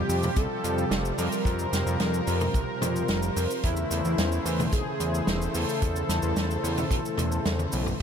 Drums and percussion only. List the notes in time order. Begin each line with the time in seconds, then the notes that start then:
0.09 open hi-hat, cabasa
0.23 mid tom, cabasa
0.36 kick, closed hi-hat, cabasa
0.64 closed hi-hat, cabasa
0.78 cabasa
0.91 snare, closed hi-hat, cabasa
1.05 cabasa
1.18 open hi-hat, cabasa
1.32 cabasa
1.45 kick, closed hi-hat, cabasa
1.59 cabasa
1.73 snare, closed hi-hat, cabasa
1.87 cabasa
2.00 snare, closed hi-hat, cabasa
2.14 cabasa
2.27 open hi-hat, cabasa
2.41 mid tom, cabasa
2.54 kick, closed hi-hat, cabasa
2.82 closed hi-hat, mid tom, cabasa
2.96 cabasa
3.08 snare, closed hi-hat, cabasa
3.22 cabasa
3.36 open hi-hat, cabasa
3.50 cabasa
3.63 kick, closed hi-hat, cabasa
3.77 cabasa
3.91 closed hi-hat, cabasa
4.05 cabasa
4.18 snare, closed hi-hat, cabasa
4.32 cabasa
4.46 open hi-hat, cabasa
4.59 mid tom, cabasa
4.73 kick, closed hi-hat, cabasa
5.00 closed hi-hat, cabasa
5.15 cabasa
5.27 snare, closed hi-hat, cabasa
5.42 cabasa
5.55 open hi-hat, cabasa
5.69 cabasa
5.82 kick, closed hi-hat, cabasa
5.96 cabasa
6.09 snare, closed hi-hat, cabasa
6.22 cabasa
6.37 snare, closed hi-hat, cabasa
6.51 cabasa
6.64 open hi-hat, cabasa
6.78 mid tom, cabasa
6.91 kick, closed hi-hat, cabasa
7.05 cabasa
7.18 closed hi-hat, mid tom, cabasa
7.32 cabasa
7.46 snare, closed hi-hat, high tom, cabasa
7.59 high tom, cabasa
7.72 open hi-hat, cabasa
7.86 mid tom, cabasa